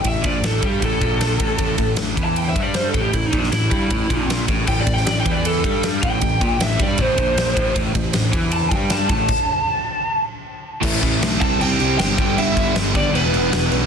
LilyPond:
<<
  \new Staff \with { instrumentName = "Lead electric guitar" } { \time 4/4 \key a \minor \tempo 4 = 156 e''8 d''8 a'8 g'8 a'2~ | a'4 \tuplet 3/2 { r4 a''8 g''8 e''8 d''8 c''8 a'8 g'8 } | \tuplet 3/2 { e'8 dis'8 d'8 } e'2 r4 | \tuplet 3/2 { g''8 d''8 g''8 d''8 g''8 d''8 } a'4 r8 g''8~ |
g''4 e''8 d''8 c''2 | r2 a''8 g''8 a''8 a''8~ | a''2~ a''8 r4. | r4. a''8 g''4 g''4 |
e''4 r8 d''8 b'4. r8 | }
  \new Staff \with { instrumentName = "Lead electric guitar" } { \time 4/4 \key a \minor r1 | r1 | r1 | r1 |
r1 | r1 | r1 | r4. a'8 g'4 g'4 |
e'4 r8 d'8 b4. r8 | }
  \new Staff \with { instrumentName = "Overdriven electric guitar" } { \clef bass \time 4/4 \key a \minor r1 | r1 | r1 | r1 |
r1 | r1 | r1 | <a, e a>4. <c g c'>2 <g, d g>8~ |
<g, d g>2 <e, b, e>2 | }
  \new Staff \with { instrumentName = "Overdriven electric guitar" } { \clef bass \time 4/4 \key a \minor a,8 bes,8 a,8 g8 a,8 bes,4 a,8 | a,8 a,8 a,8 e4 g4 a,8 | a,8 bes,8 a,8 g8 a,8 bes,4 a,8 | a,8 a,8 a,8 e4 g4 a,8 |
a,8 bes,8 a,8 g8 a,8 bes,4 a,8 | a,8 a,8 a,8 e4 g4 a,8 | r1 | <a, e a>8 <a, e a>8 <a, e a>8 <c g c'>8 <c g c'>8 <c g c'>8 <c g c'>8 <g, d g>8 |
<g, d g>8 <g, d g>8 <g, d g>8 <g, d g>8 <e, b, e>8 <e, b, e>8 <e, b, e>8 <e, b, e>8 | }
  \new Staff \with { instrumentName = "Picked electric bass" } { \clef bass \time 4/4 \key a \minor a,,8 bes,,8 a,,8 g,8 a,,8 bes,,4 a,,8 | a,,8 a,,8 a,,8 e,4 g,4 a,,8 | a,,8 bes,,8 a,,8 g,8 a,,8 bes,,4 a,,8 | a,,8 a,,8 a,,8 e,4 g,4 a,,8 |
a,,8 bes,,8 a,,8 g,8 a,,8 bes,,4 a,,8 | a,,8 a,,8 a,,8 e,4 g,4 a,,8 | r1 | a,,8 a,,8 b,,8 c,8 c,8 c,8 g,,8 g,,8 |
g,,4 g,,8 g,,8 e,,8 e,,8 e,,8 b,,8 | }
  \new DrumStaff \with { instrumentName = "Drums" } \drummode { \time 4/4 <bd cymr>8 <bd cymr>8 <cymr sn>8 <bd cymr>8 <bd cymr>8 <bd cymr>8 <cymr sn>8 <bd cymr>8 | <bd cymr>8 <bd cymr>8 <cymr sn>8 <bd cymr>8 cymr8 <bd cymr>8 <cymr sn>8 <bd cymr>8 | <bd cymr>8 <bd cymr>16 sn16 <cymr sn>8 <bd cymr>8 <bd cymr>8 <bd cymr>8 <cymr sn>8 <bd cymr>8 | <cymc bd>8 <bd cymr>16 sn16 <cymr sn>8 <bd cymr>8 cymr8 <bd cymr>8 <cymr sn>8 <bd cymr>8 |
<bd cymr>8 <bd cymr>8 <cymr sn>8 <bd cymr>8 <bd cymr>8 <bd cymr>8 <cymr sn>8 <bd cymr>8 | <bd cymr>8 <bd cymr>8 <cymr sn>8 <bd cymr>8 cymr8 <bd cymr>8 <cymr sn>8 <bd cymr>8 | <cymc bd>4 r4 r4 r4 | <cymc bd>8 <cymc bd>8 <cymc sn>8 <cymc bd>8 cymc8 cymc8 <cymc sn>8 <cymc bd>8 |
cymc8 <cymc bd>8 <cymc sn>8 <cymc bd>8 cymc8 cymc8 <cymc sn>8 cymc8 | }
>>